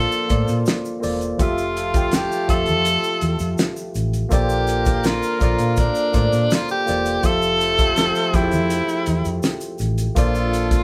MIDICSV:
0, 0, Header, 1, 6, 480
1, 0, Start_track
1, 0, Key_signature, -1, "major"
1, 0, Tempo, 729927
1, 918, Time_signature, 4, 2, 24, 8
1, 7125, End_track
2, 0, Start_track
2, 0, Title_t, "Tine electric piano"
2, 0, Program_c, 0, 4
2, 0, Control_c, 0, 64, 127
2, 0, Note_on_c, 0, 58, 71
2, 0, Note_on_c, 0, 65, 73
2, 0, Note_on_c, 0, 69, 76
2, 0, Note_on_c, 0, 72, 66
2, 0, Note_on_c, 0, 74, 83
2, 143, Note_off_c, 0, 58, 0
2, 146, Note_off_c, 0, 65, 0
2, 149, Note_off_c, 0, 69, 0
2, 152, Note_off_c, 0, 72, 0
2, 155, Note_off_c, 0, 74, 0
2, 185, Note_on_c, 0, 58, 59
2, 191, Note_on_c, 0, 65, 58
2, 194, Note_on_c, 0, 69, 56
2, 201, Note_on_c, 0, 72, 55
2, 208, Note_on_c, 0, 74, 65
2, 621, Note_off_c, 0, 58, 0
2, 624, Note_off_c, 0, 65, 0
2, 626, Note_off_c, 0, 69, 0
2, 629, Note_off_c, 0, 72, 0
2, 633, Note_off_c, 0, 74, 0
2, 657, Note_on_c, 0, 58, 73
2, 665, Note_on_c, 0, 65, 62
2, 672, Note_on_c, 0, 69, 61
2, 675, Note_on_c, 0, 72, 58
2, 681, Note_on_c, 0, 74, 80
2, 882, Note_off_c, 0, 58, 0
2, 886, Note_off_c, 0, 65, 0
2, 890, Note_off_c, 0, 69, 0
2, 892, Note_off_c, 0, 72, 0
2, 894, Note_off_c, 0, 74, 0
2, 906, Note_on_c, 0, 53, 85
2, 913, Note_on_c, 0, 65, 82
2, 921, Note_on_c, 0, 67, 78
2, 925, Note_on_c, 0, 69, 78
2, 926, Control_c, 0, 64, 0
2, 930, Note_on_c, 0, 76, 98
2, 1030, Control_c, 0, 64, 127
2, 1235, Note_off_c, 0, 53, 0
2, 1238, Note_off_c, 0, 65, 0
2, 1242, Note_off_c, 0, 67, 0
2, 1244, Note_off_c, 0, 69, 0
2, 1246, Note_off_c, 0, 76, 0
2, 1272, Note_on_c, 0, 53, 59
2, 1277, Note_on_c, 0, 65, 52
2, 1283, Note_on_c, 0, 67, 50
2, 1286, Note_on_c, 0, 69, 52
2, 1294, Note_on_c, 0, 79, 63
2, 1597, Note_off_c, 0, 53, 0
2, 1600, Note_off_c, 0, 65, 0
2, 1603, Note_off_c, 0, 67, 0
2, 1604, Note_off_c, 0, 69, 0
2, 1608, Note_off_c, 0, 79, 0
2, 1627, Note_on_c, 0, 53, 77
2, 1632, Note_on_c, 0, 65, 73
2, 1639, Note_on_c, 0, 67, 71
2, 1644, Note_on_c, 0, 69, 70
2, 1650, Note_on_c, 0, 76, 85
2, 2492, Note_off_c, 0, 53, 0
2, 2495, Note_off_c, 0, 65, 0
2, 2498, Note_off_c, 0, 67, 0
2, 2500, Note_off_c, 0, 69, 0
2, 2503, Note_off_c, 0, 76, 0
2, 2821, Note_on_c, 0, 58, 96
2, 2830, Note_on_c, 0, 65, 85
2, 2831, Note_on_c, 0, 69, 87
2, 2839, Note_on_c, 0, 72, 83
2, 2845, Note_on_c, 0, 74, 102
2, 2846, Control_c, 0, 64, 0
2, 2959, Control_c, 0, 64, 127
2, 3474, Note_off_c, 0, 58, 0
2, 3479, Note_off_c, 0, 65, 0
2, 3479, Note_off_c, 0, 69, 0
2, 3484, Note_off_c, 0, 72, 0
2, 3486, Note_off_c, 0, 74, 0
2, 3545, Note_on_c, 0, 58, 74
2, 3549, Note_on_c, 0, 65, 74
2, 3557, Note_on_c, 0, 69, 73
2, 3564, Note_on_c, 0, 72, 68
2, 3566, Note_on_c, 0, 74, 80
2, 3982, Note_off_c, 0, 58, 0
2, 3983, Note_off_c, 0, 65, 0
2, 3987, Note_off_c, 0, 69, 0
2, 3991, Note_off_c, 0, 72, 0
2, 3992, Note_off_c, 0, 74, 0
2, 4024, Note_on_c, 0, 58, 63
2, 4029, Note_on_c, 0, 65, 55
2, 4037, Note_on_c, 0, 69, 53
2, 4042, Note_on_c, 0, 72, 61
2, 4050, Note_on_c, 0, 74, 71
2, 4461, Note_off_c, 0, 58, 0
2, 4464, Note_off_c, 0, 65, 0
2, 4468, Note_off_c, 0, 69, 0
2, 4470, Note_off_c, 0, 72, 0
2, 4474, Note_off_c, 0, 74, 0
2, 4510, Note_on_c, 0, 58, 70
2, 4517, Note_on_c, 0, 65, 64
2, 4520, Note_on_c, 0, 69, 51
2, 4526, Note_on_c, 0, 72, 57
2, 4533, Note_on_c, 0, 74, 70
2, 4730, Note_off_c, 0, 58, 0
2, 4733, Note_off_c, 0, 65, 0
2, 4734, Note_off_c, 0, 69, 0
2, 4738, Note_off_c, 0, 72, 0
2, 4741, Note_off_c, 0, 74, 0
2, 4749, Note_on_c, 0, 53, 90
2, 4758, Note_on_c, 0, 65, 87
2, 4762, Note_on_c, 0, 67, 77
2, 4767, Note_on_c, 0, 69, 80
2, 4768, Control_c, 0, 64, 0
2, 4773, Note_on_c, 0, 76, 100
2, 4872, Control_c, 0, 64, 127
2, 5077, Note_off_c, 0, 53, 0
2, 5081, Note_off_c, 0, 65, 0
2, 5083, Note_off_c, 0, 67, 0
2, 5085, Note_off_c, 0, 69, 0
2, 5089, Note_off_c, 0, 76, 0
2, 5117, Note_on_c, 0, 53, 61
2, 5123, Note_on_c, 0, 65, 63
2, 5128, Note_on_c, 0, 67, 59
2, 5133, Note_on_c, 0, 69, 56
2, 5140, Note_on_c, 0, 76, 73
2, 5441, Note_off_c, 0, 53, 0
2, 5443, Note_off_c, 0, 65, 0
2, 5446, Note_off_c, 0, 67, 0
2, 5449, Note_off_c, 0, 69, 0
2, 5452, Note_off_c, 0, 76, 0
2, 5475, Note_on_c, 0, 53, 77
2, 5482, Note_on_c, 0, 64, 72
2, 5486, Note_on_c, 0, 67, 71
2, 5496, Note_on_c, 0, 68, 55
2, 5499, Note_on_c, 0, 79, 89
2, 5530, Note_off_c, 0, 68, 0
2, 5536, Note_on_c, 0, 69, 69
2, 6337, Note_off_c, 0, 53, 0
2, 6340, Note_off_c, 0, 64, 0
2, 6343, Note_off_c, 0, 67, 0
2, 6349, Note_off_c, 0, 79, 0
2, 6368, Note_off_c, 0, 69, 0
2, 6675, Note_on_c, 0, 58, 97
2, 6678, Note_on_c, 0, 65, 82
2, 6685, Note_on_c, 0, 69, 82
2, 6690, Control_c, 0, 64, 0
2, 6690, Note_on_c, 0, 72, 81
2, 6698, Note_on_c, 0, 74, 101
2, 6823, Control_c, 0, 64, 127
2, 7125, Note_off_c, 0, 58, 0
2, 7125, Note_off_c, 0, 65, 0
2, 7125, Note_off_c, 0, 69, 0
2, 7125, Note_off_c, 0, 72, 0
2, 7125, Note_off_c, 0, 74, 0
2, 7125, End_track
3, 0, Start_track
3, 0, Title_t, "Tenor saxophone"
3, 0, Program_c, 1, 66
3, 0, Note_on_c, 1, 69, 103
3, 417, Note_off_c, 1, 69, 0
3, 937, Note_on_c, 1, 65, 92
3, 1412, Note_on_c, 1, 67, 98
3, 1422, Note_off_c, 1, 65, 0
3, 1642, Note_off_c, 1, 67, 0
3, 1646, Note_on_c, 1, 69, 103
3, 2336, Note_off_c, 1, 69, 0
3, 2850, Note_on_c, 1, 67, 98
3, 3334, Note_on_c, 1, 65, 97
3, 3343, Note_off_c, 1, 67, 0
3, 3566, Note_off_c, 1, 65, 0
3, 3576, Note_on_c, 1, 65, 80
3, 3791, Note_off_c, 1, 65, 0
3, 3813, Note_on_c, 1, 62, 93
3, 4302, Note_on_c, 1, 65, 102
3, 4312, Note_off_c, 1, 62, 0
3, 4411, Note_off_c, 1, 65, 0
3, 4415, Note_on_c, 1, 67, 97
3, 4771, Note_on_c, 1, 69, 114
3, 4781, Note_off_c, 1, 67, 0
3, 5490, Note_on_c, 1, 64, 93
3, 5499, Note_off_c, 1, 69, 0
3, 6205, Note_off_c, 1, 64, 0
3, 6697, Note_on_c, 1, 65, 95
3, 7125, Note_off_c, 1, 65, 0
3, 7125, End_track
4, 0, Start_track
4, 0, Title_t, "Horn section"
4, 0, Program_c, 2, 61
4, 0, Note_on_c, 2, 53, 82
4, 0, Note_on_c, 2, 58, 72
4, 0, Note_on_c, 2, 62, 71
4, 0, Note_on_c, 2, 65, 89
4, 652, Note_off_c, 2, 62, 0
4, 653, Note_off_c, 2, 53, 0
4, 653, Note_off_c, 2, 58, 0
4, 653, Note_off_c, 2, 65, 0
4, 922, Note_on_c, 2, 65, 80
4, 923, Note_on_c, 2, 57, 78
4, 923, Note_on_c, 2, 69, 79
4, 2574, Note_off_c, 2, 65, 0
4, 2574, Note_off_c, 2, 69, 0
4, 2575, Note_off_c, 2, 57, 0
4, 2833, Note_on_c, 2, 58, 85
4, 2833, Note_on_c, 2, 70, 92
4, 2834, Note_on_c, 2, 62, 72
4, 2834, Note_on_c, 2, 65, 77
4, 4490, Note_off_c, 2, 58, 0
4, 4490, Note_off_c, 2, 65, 0
4, 4490, Note_off_c, 2, 70, 0
4, 4491, Note_off_c, 2, 62, 0
4, 4761, Note_on_c, 2, 53, 77
4, 4761, Note_on_c, 2, 57, 80
4, 4762, Note_on_c, 2, 60, 78
4, 6414, Note_off_c, 2, 57, 0
4, 6415, Note_off_c, 2, 53, 0
4, 6415, Note_off_c, 2, 60, 0
4, 6686, Note_on_c, 2, 57, 73
4, 6686, Note_on_c, 2, 69, 80
4, 6687, Note_on_c, 2, 62, 75
4, 6687, Note_on_c, 2, 65, 76
4, 7125, Note_off_c, 2, 57, 0
4, 7125, Note_off_c, 2, 62, 0
4, 7125, Note_off_c, 2, 65, 0
4, 7125, Note_off_c, 2, 69, 0
4, 7125, End_track
5, 0, Start_track
5, 0, Title_t, "Fingered electric bass"
5, 0, Program_c, 3, 33
5, 203, Note_on_c, 3, 45, 98
5, 295, Note_off_c, 3, 45, 0
5, 325, Note_on_c, 3, 46, 99
5, 416, Note_off_c, 3, 46, 0
5, 683, Note_on_c, 3, 28, 81
5, 868, Note_off_c, 3, 28, 0
5, 921, Note_on_c, 3, 29, 94
5, 1493, Note_off_c, 3, 29, 0
5, 1638, Note_on_c, 3, 29, 95
5, 1761, Note_on_c, 3, 41, 84
5, 1771, Note_off_c, 3, 29, 0
5, 1948, Note_off_c, 3, 41, 0
5, 2119, Note_on_c, 3, 40, 91
5, 2212, Note_off_c, 3, 40, 0
5, 2238, Note_on_c, 3, 41, 97
5, 2332, Note_off_c, 3, 41, 0
5, 2599, Note_on_c, 3, 33, 80
5, 2786, Note_off_c, 3, 33, 0
5, 2843, Note_on_c, 3, 34, 103
5, 3415, Note_off_c, 3, 34, 0
5, 3562, Note_on_c, 3, 34, 90
5, 3654, Note_off_c, 3, 34, 0
5, 3681, Note_on_c, 3, 46, 87
5, 3867, Note_off_c, 3, 46, 0
5, 4042, Note_on_c, 3, 45, 98
5, 4135, Note_off_c, 3, 45, 0
5, 4162, Note_on_c, 3, 46, 92
5, 4255, Note_off_c, 3, 46, 0
5, 4528, Note_on_c, 3, 28, 93
5, 4712, Note_off_c, 3, 28, 0
5, 4762, Note_on_c, 3, 29, 101
5, 5335, Note_off_c, 3, 29, 0
5, 5486, Note_on_c, 3, 29, 97
5, 5607, Note_on_c, 3, 41, 88
5, 5616, Note_off_c, 3, 29, 0
5, 5791, Note_off_c, 3, 41, 0
5, 5968, Note_on_c, 3, 40, 92
5, 6058, Note_off_c, 3, 40, 0
5, 6089, Note_on_c, 3, 41, 102
5, 6179, Note_off_c, 3, 41, 0
5, 6443, Note_on_c, 3, 33, 91
5, 6629, Note_off_c, 3, 33, 0
5, 6687, Note_on_c, 3, 34, 94
5, 7125, Note_off_c, 3, 34, 0
5, 7125, End_track
6, 0, Start_track
6, 0, Title_t, "Drums"
6, 78, Note_on_c, 9, 82, 54
6, 84, Note_on_c, 9, 42, 32
6, 144, Note_off_c, 9, 82, 0
6, 150, Note_off_c, 9, 42, 0
6, 195, Note_on_c, 9, 42, 82
6, 195, Note_on_c, 9, 82, 42
6, 199, Note_on_c, 9, 36, 93
6, 261, Note_off_c, 9, 42, 0
6, 261, Note_off_c, 9, 82, 0
6, 265, Note_off_c, 9, 36, 0
6, 315, Note_on_c, 9, 82, 52
6, 323, Note_on_c, 9, 42, 45
6, 380, Note_off_c, 9, 82, 0
6, 388, Note_off_c, 9, 42, 0
6, 433, Note_on_c, 9, 82, 76
6, 444, Note_on_c, 9, 42, 95
6, 446, Note_on_c, 9, 38, 111
6, 498, Note_off_c, 9, 82, 0
6, 510, Note_off_c, 9, 42, 0
6, 511, Note_off_c, 9, 38, 0
6, 560, Note_on_c, 9, 82, 47
6, 626, Note_off_c, 9, 82, 0
6, 678, Note_on_c, 9, 82, 56
6, 679, Note_on_c, 9, 46, 67
6, 744, Note_off_c, 9, 82, 0
6, 745, Note_off_c, 9, 46, 0
6, 796, Note_on_c, 9, 42, 62
6, 800, Note_on_c, 9, 82, 52
6, 862, Note_off_c, 9, 42, 0
6, 866, Note_off_c, 9, 82, 0
6, 916, Note_on_c, 9, 42, 91
6, 917, Note_on_c, 9, 36, 105
6, 918, Note_on_c, 9, 82, 67
6, 982, Note_off_c, 9, 42, 0
6, 983, Note_off_c, 9, 36, 0
6, 984, Note_off_c, 9, 82, 0
6, 1039, Note_on_c, 9, 82, 51
6, 1040, Note_on_c, 9, 42, 36
6, 1105, Note_off_c, 9, 82, 0
6, 1106, Note_off_c, 9, 42, 0
6, 1162, Note_on_c, 9, 42, 75
6, 1163, Note_on_c, 9, 82, 51
6, 1228, Note_off_c, 9, 42, 0
6, 1229, Note_off_c, 9, 82, 0
6, 1275, Note_on_c, 9, 42, 67
6, 1278, Note_on_c, 9, 36, 105
6, 1284, Note_on_c, 9, 82, 59
6, 1341, Note_off_c, 9, 42, 0
6, 1344, Note_off_c, 9, 36, 0
6, 1350, Note_off_c, 9, 82, 0
6, 1390, Note_on_c, 9, 42, 83
6, 1398, Note_on_c, 9, 82, 78
6, 1400, Note_on_c, 9, 38, 106
6, 1456, Note_off_c, 9, 42, 0
6, 1464, Note_off_c, 9, 82, 0
6, 1466, Note_off_c, 9, 38, 0
6, 1525, Note_on_c, 9, 82, 51
6, 1590, Note_off_c, 9, 82, 0
6, 1636, Note_on_c, 9, 42, 66
6, 1637, Note_on_c, 9, 36, 96
6, 1639, Note_on_c, 9, 82, 49
6, 1702, Note_off_c, 9, 42, 0
6, 1703, Note_off_c, 9, 36, 0
6, 1705, Note_off_c, 9, 82, 0
6, 1748, Note_on_c, 9, 42, 48
6, 1761, Note_on_c, 9, 82, 44
6, 1813, Note_off_c, 9, 42, 0
6, 1827, Note_off_c, 9, 82, 0
6, 1874, Note_on_c, 9, 42, 87
6, 1880, Note_on_c, 9, 82, 81
6, 1939, Note_off_c, 9, 42, 0
6, 1946, Note_off_c, 9, 82, 0
6, 1998, Note_on_c, 9, 82, 53
6, 2063, Note_off_c, 9, 82, 0
6, 2112, Note_on_c, 9, 42, 82
6, 2116, Note_on_c, 9, 82, 45
6, 2178, Note_off_c, 9, 42, 0
6, 2181, Note_off_c, 9, 82, 0
6, 2231, Note_on_c, 9, 82, 58
6, 2238, Note_on_c, 9, 42, 43
6, 2296, Note_off_c, 9, 82, 0
6, 2303, Note_off_c, 9, 42, 0
6, 2354, Note_on_c, 9, 82, 71
6, 2361, Note_on_c, 9, 42, 102
6, 2362, Note_on_c, 9, 38, 114
6, 2420, Note_off_c, 9, 82, 0
6, 2426, Note_off_c, 9, 42, 0
6, 2428, Note_off_c, 9, 38, 0
6, 2476, Note_on_c, 9, 82, 54
6, 2542, Note_off_c, 9, 82, 0
6, 2595, Note_on_c, 9, 82, 53
6, 2602, Note_on_c, 9, 42, 61
6, 2661, Note_off_c, 9, 82, 0
6, 2668, Note_off_c, 9, 42, 0
6, 2719, Note_on_c, 9, 42, 54
6, 2722, Note_on_c, 9, 82, 51
6, 2784, Note_off_c, 9, 42, 0
6, 2788, Note_off_c, 9, 82, 0
6, 2834, Note_on_c, 9, 82, 67
6, 2839, Note_on_c, 9, 36, 111
6, 2841, Note_on_c, 9, 42, 90
6, 2900, Note_off_c, 9, 82, 0
6, 2904, Note_off_c, 9, 36, 0
6, 2907, Note_off_c, 9, 42, 0
6, 2955, Note_on_c, 9, 82, 50
6, 3021, Note_off_c, 9, 82, 0
6, 3072, Note_on_c, 9, 82, 49
6, 3082, Note_on_c, 9, 42, 80
6, 3138, Note_off_c, 9, 82, 0
6, 3148, Note_off_c, 9, 42, 0
6, 3192, Note_on_c, 9, 82, 57
6, 3199, Note_on_c, 9, 36, 108
6, 3201, Note_on_c, 9, 42, 65
6, 3258, Note_off_c, 9, 82, 0
6, 3265, Note_off_c, 9, 36, 0
6, 3267, Note_off_c, 9, 42, 0
6, 3314, Note_on_c, 9, 82, 80
6, 3315, Note_on_c, 9, 42, 82
6, 3325, Note_on_c, 9, 38, 107
6, 3379, Note_off_c, 9, 82, 0
6, 3381, Note_off_c, 9, 42, 0
6, 3391, Note_off_c, 9, 38, 0
6, 3437, Note_on_c, 9, 82, 49
6, 3503, Note_off_c, 9, 82, 0
6, 3555, Note_on_c, 9, 82, 53
6, 3559, Note_on_c, 9, 36, 95
6, 3563, Note_on_c, 9, 42, 65
6, 3620, Note_off_c, 9, 82, 0
6, 3624, Note_off_c, 9, 36, 0
6, 3629, Note_off_c, 9, 42, 0
6, 3673, Note_on_c, 9, 42, 51
6, 3677, Note_on_c, 9, 82, 45
6, 3739, Note_off_c, 9, 42, 0
6, 3743, Note_off_c, 9, 82, 0
6, 3791, Note_on_c, 9, 82, 78
6, 3796, Note_on_c, 9, 42, 99
6, 3799, Note_on_c, 9, 36, 97
6, 3856, Note_off_c, 9, 82, 0
6, 3861, Note_off_c, 9, 42, 0
6, 3864, Note_off_c, 9, 36, 0
6, 3913, Note_on_c, 9, 82, 50
6, 3922, Note_on_c, 9, 42, 34
6, 3979, Note_off_c, 9, 82, 0
6, 3988, Note_off_c, 9, 42, 0
6, 4034, Note_on_c, 9, 82, 49
6, 4039, Note_on_c, 9, 36, 99
6, 4039, Note_on_c, 9, 42, 83
6, 4100, Note_off_c, 9, 82, 0
6, 4104, Note_off_c, 9, 42, 0
6, 4105, Note_off_c, 9, 36, 0
6, 4160, Note_on_c, 9, 82, 52
6, 4163, Note_on_c, 9, 42, 48
6, 4226, Note_off_c, 9, 82, 0
6, 4228, Note_off_c, 9, 42, 0
6, 4279, Note_on_c, 9, 82, 71
6, 4286, Note_on_c, 9, 42, 105
6, 4288, Note_on_c, 9, 38, 111
6, 4345, Note_off_c, 9, 82, 0
6, 4352, Note_off_c, 9, 42, 0
6, 4354, Note_off_c, 9, 38, 0
6, 4397, Note_on_c, 9, 82, 50
6, 4462, Note_off_c, 9, 82, 0
6, 4520, Note_on_c, 9, 82, 53
6, 4525, Note_on_c, 9, 42, 60
6, 4531, Note_on_c, 9, 38, 32
6, 4586, Note_off_c, 9, 82, 0
6, 4591, Note_off_c, 9, 42, 0
6, 4597, Note_off_c, 9, 38, 0
6, 4640, Note_on_c, 9, 82, 55
6, 4641, Note_on_c, 9, 42, 59
6, 4706, Note_off_c, 9, 82, 0
6, 4707, Note_off_c, 9, 42, 0
6, 4755, Note_on_c, 9, 82, 66
6, 4757, Note_on_c, 9, 42, 89
6, 4760, Note_on_c, 9, 36, 93
6, 4821, Note_off_c, 9, 82, 0
6, 4822, Note_off_c, 9, 42, 0
6, 4826, Note_off_c, 9, 36, 0
6, 4879, Note_on_c, 9, 82, 46
6, 4945, Note_off_c, 9, 82, 0
6, 5000, Note_on_c, 9, 82, 49
6, 5004, Note_on_c, 9, 42, 72
6, 5066, Note_off_c, 9, 82, 0
6, 5070, Note_off_c, 9, 42, 0
6, 5118, Note_on_c, 9, 82, 56
6, 5120, Note_on_c, 9, 42, 64
6, 5122, Note_on_c, 9, 36, 107
6, 5184, Note_off_c, 9, 82, 0
6, 5186, Note_off_c, 9, 42, 0
6, 5188, Note_off_c, 9, 36, 0
6, 5236, Note_on_c, 9, 42, 84
6, 5240, Note_on_c, 9, 82, 78
6, 5246, Note_on_c, 9, 38, 97
6, 5301, Note_off_c, 9, 42, 0
6, 5306, Note_off_c, 9, 82, 0
6, 5312, Note_off_c, 9, 38, 0
6, 5360, Note_on_c, 9, 82, 52
6, 5367, Note_on_c, 9, 42, 36
6, 5426, Note_off_c, 9, 82, 0
6, 5433, Note_off_c, 9, 42, 0
6, 5482, Note_on_c, 9, 82, 52
6, 5483, Note_on_c, 9, 36, 99
6, 5485, Note_on_c, 9, 42, 70
6, 5548, Note_off_c, 9, 36, 0
6, 5548, Note_off_c, 9, 82, 0
6, 5550, Note_off_c, 9, 42, 0
6, 5598, Note_on_c, 9, 42, 50
6, 5607, Note_on_c, 9, 82, 47
6, 5664, Note_off_c, 9, 42, 0
6, 5673, Note_off_c, 9, 82, 0
6, 5723, Note_on_c, 9, 42, 92
6, 5723, Note_on_c, 9, 82, 72
6, 5789, Note_off_c, 9, 42, 0
6, 5789, Note_off_c, 9, 82, 0
6, 5842, Note_on_c, 9, 82, 51
6, 5845, Note_on_c, 9, 42, 35
6, 5908, Note_off_c, 9, 82, 0
6, 5911, Note_off_c, 9, 42, 0
6, 5959, Note_on_c, 9, 42, 83
6, 5959, Note_on_c, 9, 82, 47
6, 6025, Note_off_c, 9, 42, 0
6, 6025, Note_off_c, 9, 82, 0
6, 6082, Note_on_c, 9, 82, 60
6, 6084, Note_on_c, 9, 42, 42
6, 6148, Note_off_c, 9, 82, 0
6, 6150, Note_off_c, 9, 42, 0
6, 6199, Note_on_c, 9, 82, 75
6, 6205, Note_on_c, 9, 42, 95
6, 6207, Note_on_c, 9, 38, 118
6, 6264, Note_off_c, 9, 82, 0
6, 6271, Note_off_c, 9, 42, 0
6, 6273, Note_off_c, 9, 38, 0
6, 6317, Note_on_c, 9, 82, 54
6, 6323, Note_on_c, 9, 42, 37
6, 6383, Note_off_c, 9, 82, 0
6, 6389, Note_off_c, 9, 42, 0
6, 6434, Note_on_c, 9, 82, 52
6, 6450, Note_on_c, 9, 42, 61
6, 6500, Note_off_c, 9, 82, 0
6, 6515, Note_off_c, 9, 42, 0
6, 6563, Note_on_c, 9, 42, 63
6, 6563, Note_on_c, 9, 82, 53
6, 6629, Note_off_c, 9, 42, 0
6, 6629, Note_off_c, 9, 82, 0
6, 6684, Note_on_c, 9, 36, 109
6, 6684, Note_on_c, 9, 82, 68
6, 6685, Note_on_c, 9, 42, 80
6, 6749, Note_off_c, 9, 82, 0
6, 6750, Note_off_c, 9, 36, 0
6, 6750, Note_off_c, 9, 42, 0
6, 6805, Note_on_c, 9, 82, 48
6, 6811, Note_on_c, 9, 42, 34
6, 6871, Note_off_c, 9, 82, 0
6, 6876, Note_off_c, 9, 42, 0
6, 6928, Note_on_c, 9, 42, 77
6, 6929, Note_on_c, 9, 82, 50
6, 6994, Note_off_c, 9, 42, 0
6, 6994, Note_off_c, 9, 82, 0
6, 7044, Note_on_c, 9, 36, 94
6, 7044, Note_on_c, 9, 42, 61
6, 7048, Note_on_c, 9, 82, 50
6, 7050, Note_on_c, 9, 38, 36
6, 7109, Note_off_c, 9, 42, 0
6, 7110, Note_off_c, 9, 36, 0
6, 7114, Note_off_c, 9, 82, 0
6, 7116, Note_off_c, 9, 38, 0
6, 7125, End_track
0, 0, End_of_file